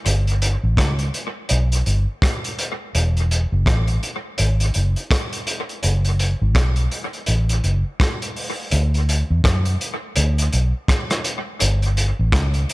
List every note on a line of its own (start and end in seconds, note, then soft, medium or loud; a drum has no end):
0.06 0.55 G1 medium
0.06 closed hi-hat loud
0.27 closed hi-hat soft
0.42 closed hi-hat medium
0.64 0.78 A1 medium
0.77 1.09 C#2 loud
0.77 kick loud
0.77 cross-stick loud
0.77 closed hi-hat medium
0.99 closed hi-hat soft
1.14 closed hi-hat medium
1.49 1.81 B1 medium
1.49 closed hi-hat medium
1.72 closed hi-hat medium
1.86 2.05 G1 medium
1.86 closed hi-hat medium
2.22 kick loud
2.22 cross-stick loud
2.22 closed hi-hat medium
2.44 closed hi-hat medium
2.59 closed hi-hat medium
2.95 3.44 E1 medium
2.95 closed hi-hat medium
3.17 closed hi-hat soft
3.31 closed hi-hat medium
3.52 3.64 F#1 medium
3.66 3.98 A1 medium
3.66 kick loud
3.66 cross-stick loud
3.66 closed hi-hat medium
3.87 closed hi-hat soft
4.03 closed hi-hat medium
4.38 4.70 G#1 medium
4.38 closed hi-hat medium
4.60 closed hi-hat medium
4.74 4.94 F#1 medium
4.74 closed hi-hat medium
4.96 closed hi-hat soft
5.11 kick loud
5.11 cross-stick loud
5.11 closed hi-hat medium
5.33 closed hi-hat medium
5.47 closed hi-hat medium
5.69 closed hi-hat soft
5.83 6.33 F#1 medium
5.83 closed hi-hat medium
6.05 closed hi-hat soft
6.19 closed hi-hat medium
6.42 6.55 G#1 medium
6.55 6.86 B1 medium
6.55 kick loud
6.55 cross-stick loud
6.55 closed hi-hat medium
6.76 closed hi-hat soft
6.91 closed hi-hat medium
7.13 closed hi-hat soft
7.26 7.59 A1 medium
7.26 closed hi-hat medium
7.49 closed hi-hat medium
7.64 7.82 F#1 medium
7.64 closed hi-hat medium
8.00 kick loud
8.00 cross-stick loud
8.00 closed hi-hat loud
8.22 closed hi-hat medium
8.36 open hi-hat medium
8.71 9.22 D2 medium
8.71 closed hi-hat loud
8.94 closed hi-hat soft
9.09 closed hi-hat medium
9.30 9.42 E2 medium
9.44 9.75 F#2 medium
9.44 kick loud
9.44 cross-stick loud
9.44 closed hi-hat medium
9.65 closed hi-hat medium
9.81 closed hi-hat medium
10.16 10.48 D2 medium
10.16 closed hi-hat medium
10.38 closed hi-hat medium
10.53 10.72 B1 medium
10.53 closed hi-hat medium
10.88 kick loud
10.88 cross-stick loud
10.88 closed hi-hat loud
11.10 cross-stick medium
11.10 closed hi-hat medium
11.24 closed hi-hat medium
11.60 12.11 G1 loud
11.60 closed hi-hat loud
11.82 closed hi-hat soft
11.97 closed hi-hat medium
12.19 12.33 A1 medium
12.32 12.64 C#2 medium
12.32 kick loud
12.32 cross-stick loud
12.32 closed hi-hat medium
12.54 closed hi-hat soft
12.69 closed hi-hat medium